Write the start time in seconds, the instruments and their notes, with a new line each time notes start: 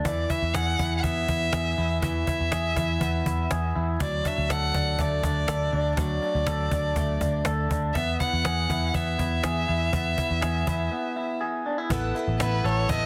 0.05 picked electric bass E2, clean electric guitar E3, violin D5, cajon bass
0.30 clean electric guitar E4, violin E5, cajon bass
0.42 picked electric bass E2
0.54 picked electric bass E2, clean electric guitar G#4, violin F#5, cajon slap
0.79 picked electric bass E2, clean electric guitar E4, cajon bass
0.97 violin F#5
1.03 picked electric bass E2, clean electric guitar B3, violin E5, cajon bass
1.29 picked electric bass E2, clean electric guitar E4, cajon bass
1.53 picked electric bass E2, clean electric guitar G#4, cajon slap
1.78 picked electric bass E2, clean electric guitar E4
2.02 picked electric bass E2, clean electric guitar E3, violin E5, cajon bass
2.27 clean electric guitar E4, cajon bass
2.40 picked electric bass E2
2.51 picked electric bass E2, clean electric guitar G#4, cajon slap
2.76 picked electric bass E2, clean electric guitar E4, cajon bass
3.00 picked electric bass E2, clean electric guitar B3, cajon bass
3.26 picked electric bass E2, clean electric guitar E4, cajon bass
3.51 picked electric bass E2, clean electric guitar G#4, cajon slap
3.75 picked electric bass E2, clean electric guitar E4
4.00 picked electric bass D2, clean electric guitar F#3, violin D5, cajon bass
4.24 clean electric guitar D4, violin E5, cajon bass
4.38 picked electric bass D2
4.49 picked electric bass D2, clean electric guitar A4, violin F#5, cajon slap
4.74 picked electric bass D2, clean electric guitar D4, cajon bass
4.99 picked electric bass D2, clean electric guitar A3, violin D5, cajon bass
5.23 picked electric bass D2, clean electric guitar D4, cajon bass
5.47 picked electric bass D2, clean electric guitar A4, cajon slap
5.72 picked electric bass D2, clean electric guitar D4
5.97 picked electric bass D2, clean electric guitar F#3, violin D5, cajon bass
6.22 clean electric guitar D4, cajon slap
6.35 picked electric bass D2
6.47 picked electric bass D2, clean electric guitar A4, cajon slap
6.71 picked electric bass D2, clean electric guitar D4, cajon bass
6.96 picked electric bass D2, clean electric guitar A3, cajon bass
7.21 picked electric bass D2, clean electric guitar D4, cajon bass
7.45 picked electric bass D2, clean electric guitar A4, cajon slap
7.70 picked electric bass D2, clean electric guitar D4, cajon bass
7.95 picked electric bass E2, clean electric guitar B3, violin E5, cajon bass
8.19 clean electric guitar E4, violin F#5, cajon bass
8.33 picked electric bass E2
8.44 picked electric bass E2, clean electric guitar G#4, cajon slap
8.69 picked electric bass E2, clean electric guitar E4, cajon bass
8.94 picked electric bass E2, clean electric guitar B3, violin E5, cajon bass
9.19 picked electric bass E2, clean electric guitar E4, cajon bass
9.43 picked electric bass E2, clean electric guitar G#4, cajon slap
9.68 picked electric bass E2, clean electric guitar E4
9.93 picked electric bass E2, clean electric guitar B3, cajon bass
10.17 clean electric guitar E4, cajon bass
10.30 picked electric bass E2
10.41 picked electric bass E2, clean electric guitar G#4, cajon slap
10.67 picked electric bass E2, clean electric guitar E4, cajon bass
10.91 clean electric guitar B3
11.16 clean electric guitar E4
11.41 clean electric guitar G#4
11.66 clean electric guitar D4
11.78 clean electric guitar E4
11.89 picked electric bass A1, twelve-string acoustic guitar A3 B3 E4 A4, clean electric guitar B3, reed electric piano E4 A4 B4, cajon bass
12.15 clean electric guitar E4, twelve-string acoustic guitar E4 A4, cajon slap
12.19 twelve-string acoustic guitar B3
12.27 picked electric bass A1
12.39 picked electric bass A1, twelve-string acoustic guitar A3 B3 E4, clean electric guitar B3, violin B4, cajon slap
12.44 twelve-string acoustic guitar A4
12.64 picked electric bass A1, twelve-string acoustic guitar E4 A4, clean electric guitar A4, violin C#5, cajon slap
12.69 twelve-string acoustic guitar B3
12.89 picked electric bass A1, twelve-string acoustic guitar A3 B3 E4, clean electric guitar E4, violin D#5, cajon bass
12.93 twelve-string acoustic guitar A4